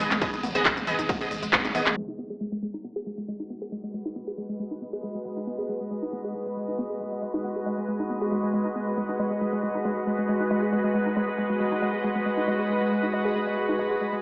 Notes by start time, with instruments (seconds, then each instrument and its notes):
0.00 808-style bass G#1
0.11 808-style bass G#1, synth arpeggio sound G#3, clap, closed hi-hat, mid tom
0.22 synth arpeggio sound G#3, synth stab B3 G#4 D#5, kick, closed hi-hat, ride
0.33 synth arpeggio sound D#4, closed hi-hat
0.43 808-style bass G#1, synth arpeggio sound B3, mid tom, open hi-hat
0.55 808-style bass G#1, synth stab B3 G#4 D#5, synth arpeggio sound G#4, closed hi-hat
0.65 synth arpeggio sound G#3, kick, clap, closed hi-hat, ride
0.77 synth arpeggio sound G#3, closed hi-hat, mid tom
0.87 808-style bass G#1, synth arpeggio sound G#3, synth stab B3 G#4 D#5, open hi-hat
0.99 808-style bass G#1, synth arpeggio sound D#4, closed hi-hat
1.09 synth arpeggio sound B3, kick, closed hi-hat, mid tom, ride
1.21 synth stab B3 G#4 D#5, synth arpeggio sound G#4, open hi-hat
1.31 808-style bass G#1, synth arpeggio sound G#3, open hi-hat
1.43 808-style bass G#1, synth arpeggio sound G#3, closed hi-hat
1.53 synth arpeggio sound G#3, synth stab B3 G#4 D#5, kick, clap, closed hi-hat, ride
1.64 synth arpeggio sound D#4, closed hi-hat, mid tom
1.75 808-style bass G#1, synth arpeggio sound B3, synth stab B3 G#4 D#5, open hi-hat
1.86 808-style bass G#1, synth arpeggio sound G#4, clap, closed hi-hat, mid tom
1.97 synth arpeggio sound G#3, ambient pad G#3
2.07 synth arpeggio sound D#4, ambient pad F#4
2.14 ambient pad B4
2.19 synth arpeggio sound B3
2.30 synth arpeggio sound G#4
2.41 synth arpeggio sound G#3
2.52 synth arpeggio sound G#3
2.63 synth arpeggio sound G#3
2.74 synth arpeggio sound D#4
2.84 synth arpeggio sound B3, ambient pad D#5
2.96 synth arpeggio sound G#4
3.06 synth arpeggio sound G#3
3.18 synth arpeggio sound G#3
3.28 synth arpeggio sound G#3
3.40 synth arpeggio sound D#4
3.50 synth arpeggio sound B3
3.62 synth arpeggio sound G#4
3.72 synth arpeggio sound G#3
3.84 synth arpeggio sound G#3
3.94 synth arpeggio sound G#3
4.05 synth arpeggio sound D#4
4.16 synth arpeggio sound B3
4.27 synth arpeggio sound G#4
4.38 synth arpeggio sound G#3
4.49 synth arpeggio sound G#3
4.60 synth arpeggio sound G#3
4.71 synth arpeggio sound D#4
4.82 synth arpeggio sound B3
4.93 synth arpeggio sound G#4
5.03 synth arpeggio sound G#3
5.15 synth arpeggio sound G#3
5.25 synth arpeggio sound G#3
5.37 synth arpeggio sound D#4
5.47 synth arpeggio sound B3
5.59 synth arpeggio sound G#4
5.69 synth arpeggio sound G#3
5.81 synth arpeggio sound G#3
5.91 synth arpeggio sound G#3
6.02 synth arpeggio sound D#4
6.13 synth arpeggio sound B3
6.24 synth arpeggio sound G#4
6.35 synth arpeggio sound G#3
6.46 synth arpeggio sound G#3
6.57 synth arpeggio sound G#3
6.68 synth arpeggio sound D#4
6.79 synth arpeggio sound B3
6.90 synth arpeggio sound G#4
7.00 synth arpeggio sound G#3
7.12 synth arpeggio sound G#3
7.22 synth arpeggio sound G#3
7.34 synth arpeggio sound D#4
7.44 synth arpeggio sound B3
7.56 synth arpeggio sound G#4
7.66 synth arpeggio sound G#3
7.78 synth arpeggio sound G#3
7.88 synth arpeggio sound G#3
8.00 synth arpeggio sound D#4
8.10 synth arpeggio sound B3
8.21 synth arpeggio sound G#4
8.32 synth arpeggio sound G#3
8.43 synth arpeggio sound G#3
8.54 synth arpeggio sound G#3
8.65 synth arpeggio sound D#4
8.76 synth arpeggio sound B3
8.87 synth arpeggio sound G#4
8.97 synth arpeggio sound G#3
9.09 synth arpeggio sound D#4
9.19 synth arpeggio sound G#3
9.31 synth arpeggio sound G#4
9.41 synth arpeggio sound G#3
9.53 synth arpeggio sound G#3
9.63 synth arpeggio sound G#3
9.75 synth arpeggio sound D#4
9.85 synth arpeggio sound G#3
9.97 synth arpeggio sound G#4
10.07 synth arpeggio sound G#3
10.18 synth arpeggio sound G#3
10.29 synth arpeggio sound G#3
10.40 synth arpeggio sound D#4
10.51 synth arpeggio sound G#3
10.62 synth arpeggio sound G#4
10.73 synth arpeggio sound G#3
10.84 synth arpeggio sound G#3
10.95 synth arpeggio sound G#3
11.06 synth arpeggio sound D#4
11.16 synth arpeggio sound G#3
11.28 synth arpeggio sound G#4
11.38 synth arpeggio sound G#3
11.50 synth arpeggio sound G#3
11.60 synth arpeggio sound G#3
11.72 synth arpeggio sound D#4
11.82 synth arpeggio sound G#3
11.94 synth arpeggio sound G#4
12.04 synth arpeggio sound G#3
12.15 synth arpeggio sound G#3
12.26 synth arpeggio sound G#3
12.37 synth arpeggio sound D#4
12.48 synth arpeggio sound G#3
12.59 synth arpeggio sound G#4
12.70 synth arpeggio sound G#3
12.81 synth arpeggio sound G#3
12.92 synth arpeggio sound G#3
13.03 synth arpeggio sound D#4
13.13 synth arpeggio sound G#3
13.25 synth arpeggio sound G#4
13.35 synth arpeggio sound G#3
13.47 synth arpeggio sound G#3
13.57 synth arpeggio sound G#3
13.69 synth arpeggio sound D#4
13.79 synth arpeggio sound G#3
13.91 synth arpeggio sound G#4
14.01 synth arpeggio sound G#3
14.13 synth arpeggio sound G#3